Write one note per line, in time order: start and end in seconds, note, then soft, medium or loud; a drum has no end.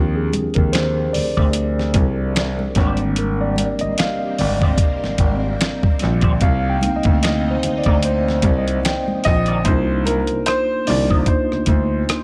0.00 0.26 D#2 medium
0.00 0.48 F3 medium
0.00 0.49 C4 soft
0.00 0.49 D4 medium
0.00 0.48 G4 soft
0.16 0.53 G#4 medium
0.33 0.44 D#2 soft
0.33 closed hi-hat medium
0.33 muted conga soft
0.33 high conga medium
0.54 1.04 D#2 medium
0.54 0.74 A#4 medium
0.54 kick medium
0.54 closed hi-hat soft
0.54 high conga soft
0.73 1.15 C5 medium
0.73 finger snap medium
0.73 snare loud
0.73 closed hi-hat medium
1.13 1.25 D2 soft
1.13 1.91 D5 medium
1.13 open hi-hat soft
1.13 muted conga soft
1.13 low conga medium
1.37 1.96 D2 medium
1.37 1.46 G4 soft
1.37 1.46 C5 medium
1.37 1.46 D5 medium
1.37 kick medium
1.37 low conga medium
1.53 closed hi-hat medium
1.53 muted conga soft
1.79 snare soft
1.94 2.61 C2 medium
1.94 kick medium
1.94 closed hi-hat medium
1.94 high conga medium
2.35 finger snap loud
2.35 muted clean electric guitar stroke soft
2.35 snare loud
2.35 closed hi-hat medium
2.35 muted conga soft
2.59 high conga medium
2.75 3.61 G#1 medium
2.75 5.97 G3 soft
2.75 5.97 A#3 soft
2.75 5.97 C4 soft
2.75 5.97 D4 medium
2.75 2.99 G4 medium
2.75 3.00 C5 medium
2.75 3.00 D5 medium
2.75 kick medium
2.75 snare soft
2.75 closed hi-hat medium
2.75 muted conga soft
2.97 closed hi-hat soft
2.97 low conga medium
3.16 6.38 C3 medium
3.16 6.38 G3 medium
3.16 9.61 A#3 medium
3.16 9.61 C4 medium
3.16 3.39 A#4 medium
3.16 closed hi-hat medium
3.41 3.59 D5 medium
3.56 closed hi-hat medium
3.56 high conga medium
3.79 3.89 G#1 soft
3.79 3.99 D#5 loud
3.79 closed hi-hat soft
3.79 high conga soft
3.98 4.40 F5 medium
3.98 finger snap medium
3.98 snare loud
3.98 closed hi-hat medium
4.38 4.72 G#1 medium
4.38 5.16 D5 medium
4.38 open hi-hat soft
4.38 muted conga soft
4.38 low conga medium
4.61 4.71 G4 medium
4.61 4.71 C5 medium
4.61 4.71 D5 medium
4.61 kick medium
4.61 low conga medium
4.78 kick loud
4.78 closed hi-hat medium
4.78 muted conga soft
5.04 5.11 G#1 soft
5.04 snare soft
5.18 5.52 G#1 medium
5.18 kick medium
5.18 closed hi-hat medium
5.18 high conga medium
5.59 finger snap medium
5.59 snare loud
5.59 closed hi-hat medium
5.59 muted conga soft
5.83 kick medium
5.83 high conga medium
5.99 6.35 A#1 loud
5.99 snare soft
5.99 closed hi-hat medium
5.99 muted conga soft
6.21 6.33 G4 medium
6.21 6.32 C5 medium
6.21 6.32 D5 medium
6.21 kick medium
6.21 closed hi-hat soft
6.21 low conga medium
6.40 6.75 C2 loud
6.40 9.62 C3 medium
6.40 9.62 D#4 medium
6.40 6.69 F5 loud
6.40 kick loud
6.40 closed hi-hat medium
6.40 muted conga soft
6.70 6.97 G5 loud
6.81 6.93 D2 soft
6.81 9.62 A#3 medium
6.81 9.62 C4 medium
6.81 9.62 D#4 medium
6.81 closed hi-hat medium
6.81 high conga medium
6.96 7.22 D#5 medium
7.03 7.53 D2 medium
7.03 kick loud
7.03 closed hi-hat soft
7.03 high conga soft
7.22 7.48 D#5 medium
7.22 finger snap medium
7.22 snare loud
7.22 closed hi-hat medium
7.22 muted conga soft
7.51 7.75 C5 medium
7.63 7.74 D2 soft
7.63 closed hi-hat medium
7.63 muted conga soft
7.63 low conga medium
7.78 8.02 D5 medium
7.84 8.45 D2 medium
7.84 7.95 D#4 soft
7.84 7.95 A#4 medium
7.84 7.95 D5 medium
7.84 kick medium
7.84 closed hi-hat soft
7.84 low conga medium
8.03 8.60 C5 medium
8.03 closed hi-hat medium
8.28 snare soft
8.42 8.77 C2 medium
8.42 kick medium
8.42 closed hi-hat medium
8.42 muted conga soft
8.42 high conga medium
8.58 8.86 D#5 medium
8.68 closed hi-hat soft
8.83 9.22 G5 medium
8.83 finger snap medium
8.83 snare loud
8.83 closed hi-hat medium
8.83 muted conga soft
9.08 high conga medium
9.24 9.59 A#1 medium
9.24 9.67 D#5 loud
9.24 kick medium
9.24 snare soft
9.24 closed hi-hat medium
9.46 9.57 D#4 soft
9.46 9.57 A#4 medium
9.46 9.57 D5 medium
9.46 closed hi-hat soft
9.46 low conga medium
9.64 10.18 C2 medium
9.64 10.63 A#3 medium
9.64 10.63 D4 medium
9.64 10.63 D#4 medium
9.64 10.64 F4 medium
9.64 10.03 C5 medium
9.64 kick medium
9.64 closed hi-hat medium
9.64 muted conga soft
9.68 10.64 C5 medium
10.05 10.47 A#4 medium
10.05 closed hi-hat medium
10.05 high conga medium
10.27 10.38 C2 soft
10.27 closed hi-hat soft
10.46 10.84 C5 medium
10.46 cross-stick medium
10.46 closed hi-hat medium
10.85 11.04 A#3 medium
10.85 11.05 D4 medium
10.85 11.05 D#4 medium
10.85 11.06 F4 medium
10.85 11.29 D5 medium
10.85 open hi-hat soft
10.85 muted conga soft
10.85 low conga medium
10.89 11.21 C2 medium
10.89 11.06 D#5 medium
11.08 12.23 A#3 medium
11.08 12.23 D4 medium
11.08 12.23 D#4 medium
11.08 12.23 F4 medium
11.08 11.19 F4 soft
11.08 11.19 A#4 medium
11.08 11.19 D#5 medium
11.08 kick medium
11.08 low conga medium
11.12 12.23 C5 medium
11.26 12.23 C5 medium
11.26 kick loud
11.26 closed hi-hat medium
11.26 muted conga soft
11.52 11.59 D2 soft
11.52 cross-stick soft
11.66 12.01 D2 medium
11.66 kick medium
11.66 closed hi-hat medium
11.66 high conga medium
12.09 cross-stick loud
12.09 closed hi-hat medium